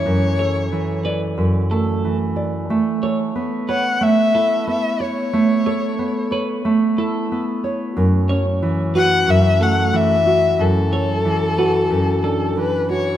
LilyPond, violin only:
\new Staff \with { instrumentName = "Violin" } { \time 4/4 \key a \major \tempo 4 = 91 cis''4. r2 r8 | r4. fis''8 e''4 e''8 cis''8~ | cis''4. r2 r8 | r4. fis''8 e''8 fis''8 e''4 |
a'2. b'8 cis''8 | }